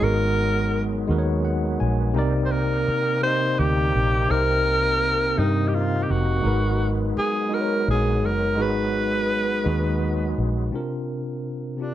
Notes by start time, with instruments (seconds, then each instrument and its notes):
Already playing: tonewheel organ F#3 G#3 B3, tine electric piano F#3 A#4 C#5
0.00 fingered electric bass G#1, tine electric piano G#3 D#4 F#4 A#4, tenor saxophone A#4
0.05 tine electric piano B3
1.07 fingered electric bass D#2, tine electric piano G#3 D#4 F#4 A#4
1.12 tine electric piano B4
1.18 tine electric piano C#5
1.45 tine electric piano F#5
1.80 fingered electric bass A#1, tine electric piano G#5
2.13 fingered electric bass C2, tine electric piano C3 C4 D#4 A#4, tonewheel organ C3 A#3 C4 D#4
2.19 tine electric piano D5
2.46 tenor saxophone C5
2.52 tenor saxophone A#4
2.88 muted fingered electric bass stroke
3.22 tine electric piano C3 C4 D#4 A#4, tenor saxophone C5
3.27 tine electric piano D#5
3.59 fingered electric bass D2, tenor saxophone G4
3.95 fingered electric bass A#1
4.28 fingered electric bass C2, tine electric piano C3 C4 D#4 A#4, tonewheel organ A#3, tenor saxophone A#4
4.34 tine electric piano C5
5.37 fingered electric bass G2, tine electric piano C3 C4 D#4, tenor saxophone D#4
5.41 tine electric piano A#4 D#5
5.68 tenor saxophone G4
5.75 tenor saxophone F4
6.03 tenor saxophone G4
6.10 fingered electric bass F1, tenor saxophone F#4
6.42 fingered electric bass G#1, tonewheel organ F#3 G#3 B3, tine electric piano G#3 D#4 F#4
6.46 tine electric piano A#4 B4
7.17 tenor saxophone G#4, muted fingered electric bass stroke
7.49 tine electric piano G#3 D#4 F#4
7.54 tine electric piano A#4 B4, tenor saxophone A#4
7.61 tine electric piano C#5
7.88 fingered electric bass A#1, tenor saxophone G#4
8.23 fingered electric bass F#1, tenor saxophone A#4
8.57 fingered electric bass G#1, tine electric piano G#3 D#4 F#4 G#4
8.62 tenor saxophone B4, tine electric piano B4
9.64 fingered electric bass D#2, tine electric piano G#3 D#4 F#4 G#4
9.69 tine electric piano B4
10.38 fingered electric bass A#1
10.71 tine electric piano C3 C4 D4 F4
10.76 tine electric piano A#4
11.77 tine electric piano C3 C4 D4 F4
11.81 tenor saxophone D4, tine electric piano G4